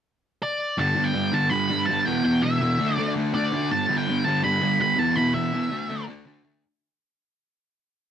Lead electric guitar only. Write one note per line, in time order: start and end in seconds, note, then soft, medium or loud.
0.43 0.76 D5 medium
0.80 1.07 A5 medium
1.05 1.33 G5 loud
1.34 1.50 A5 medium
1.50 1.88 B5 loud
1.86 2.06 A5 loud
2.06 2.24 G5 medium
2.25 2.44 G5 loud
2.43 2.95 E5 loud
2.95 3.12 D5 loud
3.35 3.69 D5 medium
3.71 3.97 A5 medium
3.98 4.24 G5 medium
4.24 4.44 A5 medium
4.44 4.80 B5 loud
4.82 4.99 B5 medium
4.99 5.16 A5 medium
5.16 5.35 B5 medium
5.34 6.03 E5 medium